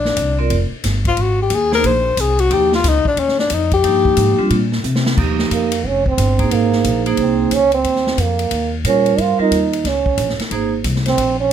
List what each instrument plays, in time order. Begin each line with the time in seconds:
Already playing: upright bass A#1, tenor saxophone D4
0.05 snare
0.17 upright bass C2, kick, hi-hat pedal, ride
0.39 vibraphone C4 F4 A#4 D5
0.50 upright bass F1, kick, ride
0.71 muted upright bass stroke
0.84 upright bass G1, kick, snare, hi-hat pedal, ride
1.05 tenor saxophone F4, kick, ride
1.17 upright bass G#1, kick, ride
1.22 tenor saxophone F#4
1.42 tenor saxophone G4
1.50 upright bass D#2, kick, hi-hat pedal, ride
1.55 tenor saxophone G#4
1.72 vibraphone A#3 D#4 G#4 C5, tenor saxophone A#4, snare
1.84 upright bass A#1, tenor saxophone C5, kick, ride
2.17 upright bass C2, tenor saxophone G#4, kick, hi-hat pedal, ride
2.39 tenor saxophone F#4, ride
2.51 upright bass D#2, vibraphone F3 A#3 D#4 G4, tenor saxophone G4, kick, ride
2.72 tenor saxophone F4, snare
2.84 upright bass C#2, kick, snare, hi-hat pedal, ride
2.88 tenor saxophone D#4
3.05 tenor saxophone D4, kick
3.17 upright bass D#2, tenor saxophone C#4, kick, ride
3.28 snare
3.39 tenor saxophone D4, snare
3.50 upright bass F2, tenor saxophone D#4, kick, hi-hat pedal, ride
3.71 tenor saxophone G4, kick, ride
3.84 upright bass G2, vibraphone F3 A#3 D#4 G4, kick, ride
4.05 kick
4.17 upright bass G#2, kick, hi-hat pedal, ride
4.38 vibraphone G3 C4 D4 F4, muted upright bass stroke
4.50 upright bass A#2, kick, ride
4.72 snare
4.84 upright bass C3, hi-hat pedal
4.96 snare
5.06 snare
5.17 upright bass D#2, vibraphone F3 A#3 D#4 G4, kick, crash
5.39 snare
5.51 upright bass F2, trombone A#3, kick, hi-hat pedal, ride
5.72 ride
5.84 upright bass F1, trombone C#4, kick
6.06 trombone C4, kick
6.18 upright bass G1, kick, hi-hat pedal, ride
6.39 vibraphone A#3 D#4 G#4 C5, kick, ride
6.51 upright bass G#1, vibraphone A#3 D#4 G#4 C5, trombone A#3, kick, ride
6.72 snare
6.84 upright bass A#1, kick, hi-hat pedal, ride
7.06 vibraphone A#3 D#4 G#4 C5, ride
7.17 upright bass C2, trombone C4, kick, ride
7.51 upright bass C#2, trombone C#4, kick, hi-hat pedal, ride
7.72 trombone C4, ride
7.84 upright bass D#2, kick, ride
7.96 snare
8.07 snare
8.18 upright bass F2, trombone A#3, kick, hi-hat pedal, ride
8.39 ride
8.51 upright bass D#2, kick, ride
8.84 upright bass A#2, vibraphone G3 F4 A#4 C5, trombone C#4, kick, hi-hat pedal, ride
9.06 ride
9.18 upright bass G2, trombone F4, kick, ride
9.39 vibraphone G3 C4 F4 A#4, trombone D#4, muted upright bass stroke
9.51 upright bass D#2, kick, hi-hat pedal, ride
9.73 ride
9.84 upright bass C#2, trombone C#4, kick, snare, ride
10.06 kick
10.17 upright bass A#1, kick, hi-hat pedal, ride
10.29 snare
10.39 muted upright bass stroke, snare, ride
10.51 upright bass G#1, vibraphone A#3 D#4 G#4 C5, kick, ride
10.84 upright bass C2, kick, hi-hat pedal, ride
10.96 snare
11.06 trombone C4, snare, ride
11.17 upright bass A#1, kick, ride
11.40 trombone C#4